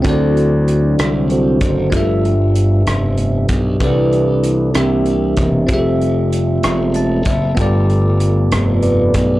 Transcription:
0.00 3.77 A3 medium
0.00 1.88 C4 medium
0.00 1.89 D4 medium
0.04 0.95 D2 medium
0.04 0.95 D3 medium
0.04 1.30 F#3 soft
0.04 1.91 F#3 medium
0.04 1.30 C4 soft
0.04 1.92 C4 medium
0.04 1.91 D4 medium
0.04 1.30 E4 soft
0.04 1.89 F#4 medium
0.04 1.90 A4 medium
0.04 kick medium
0.04 closed hi-hat medium
0.09 1.91 D5 medium
0.37 closed hi-hat soft
0.68 closed hi-hat medium
0.99 1.58 C2 medium
0.99 cross-stick medium
0.99 closed hi-hat medium
1.30 1.59 F#3 soft
1.30 1.59 C4 soft
1.30 1.59 E4 soft
1.30 1.90 F#4 medium
1.30 1.90 A4 medium
1.30 1.95 C5 medium
1.30 closed hi-hat soft
1.61 1.90 F#1 medium
1.61 kick medium
1.61 closed hi-hat medium
1.90 2.83 G1 medium
1.90 2.83 G2 medium
1.90 2.34 F3 soft
1.90 3.79 F3 medium
1.90 2.35 A3 soft
1.90 3.76 B3 medium
1.90 2.24 B3 soft
1.90 2.25 D4 medium
1.90 3.77 F4 medium
1.90 2.83 F4 medium
1.90 3.78 G4 medium
1.90 2.07 A4 medium
1.90 4.73 B4 medium
1.90 2.35 E5 soft
1.90 3.80 E5 medium
1.90 kick medium
1.90 closed hi-hat medium
1.95 3.79 A4 soft
1.95 3.79 E5 medium
2.25 2.88 B3 medium
2.25 2.88 D4 soft
2.25 2.88 G4 medium
2.25 closed hi-hat soft
2.55 closed hi-hat medium
2.87 3.46 F1 medium
2.87 3.17 B3 soft
2.87 3.78 D4 soft
2.87 3.85 G4 medium
2.87 cross-stick medium
2.87 closed hi-hat medium
3.17 3.46 F3 soft
3.17 3.47 A3 soft
3.17 3.47 B3 soft
3.17 3.47 E5 soft
3.17 closed hi-hat soft
3.48 3.78 B1 medium
3.48 kick medium
3.48 closed hi-hat medium
3.80 4.71 C2 medium
3.80 4.72 C3 medium
3.80 4.70 E3 soft
3.80 4.74 E3 medium
3.80 4.73 C4 medium
3.80 5.67 C4 medium
3.80 4.74 D4 medium
3.80 4.71 D4 medium
3.80 3.87 D#4 soft
3.80 4.71 E4 medium
3.80 4.74 G4 soft
3.80 4.78 A4 medium
3.80 4.71 B4 soft
3.80 4.76 B4 soft
3.80 4.76 D5 medium
3.80 kick loud
3.80 closed hi-hat medium
3.87 4.74 E4 medium
4.12 closed hi-hat soft
4.43 closed hi-hat medium
4.74 5.34 C2 medium
4.74 5.66 C3 soft
4.74 5.65 E3 soft
4.74 9.40 G3 medium
4.74 5.68 A#3 medium
4.74 5.66 A#3 soft
4.74 5.66 C4 soft
4.74 5.66 D4 soft
4.74 5.69 E4 soft
4.74 5.66 E4 medium
4.74 5.69 G4 soft
4.74 5.73 G4 medium
4.74 5.70 A#4 soft
4.74 7.55 E5 medium
4.74 5.70 E5 medium
4.74 cross-stick medium
4.74 closed hi-hat medium
5.05 closed hi-hat soft
5.36 5.66 E1 medium
5.36 kick medium
5.36 closed hi-hat medium
5.67 6.59 F1 medium
5.67 7.56 F3 medium
5.67 6.11 G3 soft
5.67 7.23 A3 soft
5.67 9.40 A3 medium
5.67 7.53 C4 medium
5.67 7.23 C4 soft
5.67 7.53 F4 medium
5.67 7.23 F4 medium
5.67 7.54 G4 medium
5.67 6.11 E5 soft
5.67 kick medium
5.67 closed hi-hat medium
5.72 5.77 G#4 soft
5.72 7.25 E5 medium
5.78 7.58 A4 medium
6.01 closed hi-hat soft
6.32 closed hi-hat medium
6.63 7.23 E1 medium
6.63 cross-stick medium
6.63 closed hi-hat medium
6.94 7.25 A5 medium
6.94 closed hi-hat soft
7.25 7.55 F#1 medium
7.25 7.56 E5 soft
7.25 kick medium
7.25 closed hi-hat medium
7.55 8.48 G1 medium
7.55 8.48 G2 medium
7.55 9.40 A3 soft
7.55 9.40 B3 medium
7.55 9.40 B3 soft
7.55 9.40 F4 medium
7.55 8.82 F4 medium
7.55 9.40 G4 medium
7.55 9.40 B4 medium
7.55 kick loud
7.55 closed hi-hat medium
7.60 9.40 A4 medium
7.60 9.40 D5 medium
7.90 closed hi-hat soft
8.20 closed hi-hat medium
8.52 9.11 F1 medium
8.52 cross-stick medium
8.52 closed hi-hat medium
8.82 9.40 F4 medium
8.82 9.40 B4 medium
8.82 9.40 D5 medium
8.82 closed hi-hat soft
9.14 9.40 B1 medium
9.14 kick medium
9.14 closed hi-hat medium

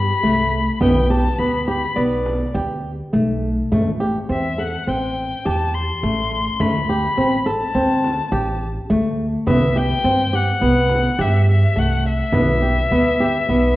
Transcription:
0.00 0.10 G2 medium
0.00 0.82 B5 medium
0.23 0.68 C2 medium
0.23 0.59 A3 medium
0.81 1.26 B1 medium
0.81 0.99 B3 medium
0.81 1.12 G5 medium
0.81 frame drum medium
1.10 1.28 G4 medium
1.10 1.40 A5 medium
1.38 1.83 D2 medium
1.38 1.57 B3 medium
1.38 1.66 B5 medium
1.67 1.85 G4 medium
1.67 1.98 B5 medium
1.96 2.42 B1 medium
1.96 2.32 B3 medium
1.96 2.54 D5 medium
1.96 frame drum soft
2.26 frame drum soft
2.55 3.00 D2 medium
2.55 2.90 G4 medium
2.55 frame drum soft
3.13 3.58 B1 medium
3.13 3.49 A3 medium
3.13 frame drum soft
3.43 frame drum soft
3.72 4.17 A1 medium
3.72 3.89 A3 medium
3.72 frame drum soft
4.00 4.18 G4 medium
4.29 4.75 E2 medium
4.29 4.47 C4 medium
4.29 4.61 E5 medium
4.58 4.76 A4 medium
4.58 4.90 F#5 medium
4.87 5.32 A1 medium
4.87 5.23 C4 medium
4.87 5.47 G5 medium
4.87 frame drum soft
5.45 5.90 E2 medium
5.45 5.81 G4 medium
5.45 5.76 A5 medium
5.74 6.62 C6 medium
6.03 6.48 A1 medium
6.03 6.39 A3 medium
6.32 frame drum soft
6.60 7.05 D2 medium
6.60 6.78 A3 medium
6.60 7.49 B5 medium
6.60 frame drum soft
6.89 7.07 G4 medium
7.17 7.62 A1 medium
7.17 7.35 C4 medium
7.46 7.64 A4 medium
7.46 8.62 A5 medium
7.75 8.19 D2 medium
7.75 8.10 C4 medium
8.04 frame drum soft
8.32 8.77 A1 medium
8.32 8.68 G4 medium
8.90 9.35 D2 medium
8.90 9.25 A3 medium
9.20 frame drum soft
9.47 9.92 C2 medium
9.47 9.65 B3 medium
9.47 9.79 E5 medium
9.47 frame drum medium
9.76 9.94 G4 medium
9.76 10.37 G5 loud
10.04 10.49 G2 medium
10.04 10.22 C4 medium
10.33 10.51 G4 medium
10.33 11.22 F#5 loud
10.61 11.06 C2 medium
10.61 10.97 B3 medium
10.61 frame drum soft
10.89 frame drum soft
11.19 11.63 G2 loud
11.19 11.54 G4 medium
11.19 11.49 E5 medium
11.51 11.80 E5 medium
11.76 12.21 C2 medium
11.76 12.11 A3 medium
11.76 12.06 F#5 medium
12.05 13.76 E5 medium
12.05 frame drum soft
12.33 12.78 B1 medium
12.33 12.51 B3 medium
12.33 frame drum medium
12.62 12.80 G4 medium
12.62 frame drum soft
12.91 13.36 D2 medium
12.91 13.09 B3 medium
12.91 frame drum soft
13.20 13.38 G4 medium
13.49 13.76 B1 medium
13.49 13.76 B3 medium

